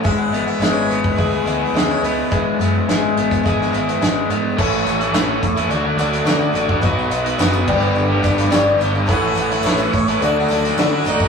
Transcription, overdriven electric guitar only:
X:1
M:4/4
L:1/16
Q:1/4=106
K:Emix
V:1 name="Overdriven electric guitar"
G,2 B,2 G,2 B,2 G2 E2 G,2 B,2 | G,2 B,2 G,2 B,2 G2 E2 G,2 B,2 | [K:Amix] [A,,E,A,CE]3 [A,CE] [A,,E,A,CE] [A,CE]2 [A,CE] [D,A,DF] [A,DF] [D,A,DF]2 [D,A,DF] [A,DF] [D,A,DF] [A,DF] | [B,,F,B,^DF]3 [B,DF] [B,,F,B,DF] [B,DF] [G,,=D,G,B,=DG] [G,B,DG]2 [G,B,DG] [G,B,DG]2 [G,,D,G,B,DG] [G,B,DG] [G,B,DG] [G,B,DG] |
[A,,E,A,CE]3 [A,CE] [A,,E,A,CE] [A,CE]2 [A,CE] [D,A,DF] [A,DF] [D,A,DF]2 [D,A,DF] [A,DF] [D,A,DF] [A,DF] |]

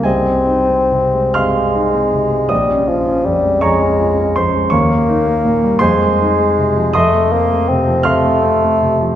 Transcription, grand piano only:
X:1
M:6/8
L:1/16
Q:3/8=53
K:Ab
V:1 name="Grand piano"
[Aea]6 [fc'f']6 | [ee']6 [dbd']4 [cc']2 | [dd']6 [cac']6 | [ec'e']6 [fc'f']4 z2 |]
V:2 name="Grand piano" clef=bass
C,, C E C C, A, C, C E C C, A, | B,,, D F D F,, A, F,, D F D F,, A, | E,, B, E B, B,, G, F,, A, E A, C, F, | F,, =A, C A, C, F, C, A, C A, C, F, |]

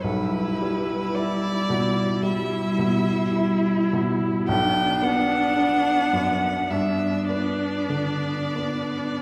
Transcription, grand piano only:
X:1
M:4/4
L:1/8
Q:1/4=53
K:Edor
V:1 name="Grand piano" clef=bass
B,,, G, E B,, G, B,, E B,, | B,,, B, D F,, G,, B, D, B, |]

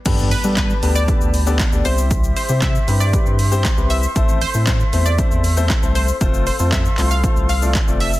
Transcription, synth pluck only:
X:1
M:4/4
L:1/16
Q:1/4=117
K:C
V:1 name="Synth pluck"
z2 B z B z2 d3 z4 c z | z2 c z e z2 d3 z4 e z | z2 c z c z2 d3 z4 c z | z2 c z e z2 f z2 f2 z2 e z |]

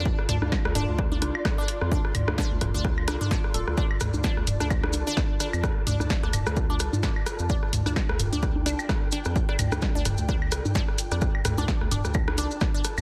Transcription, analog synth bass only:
X:1
M:4/4
L:1/16
Q:"Swing 16ths" 1/4=129
K:Dm
V:1 name="Analog synth bass" clef=bass
z2 D,, D,, z D,, D,,, D,,3 C,, z4 F,, | z2 D,, D,, z D,, D,,, D,,3 C,, z3 D,,, D,, | z2 D,, D,, z D,, D,,, D,,3 C,, z4 F,, | z2 D,, D,, z D,, D,,, D,,3 C,, z4 F,, |
z2 D,, D,, z D,, D,,, D,,3 C,, z4 F,, | z2 D,, D,, z D,, D,,, D,,3 C,, z4 F,, | z2 D,, D,, z D,, D,,, D,,3 C,, z4 F,, |]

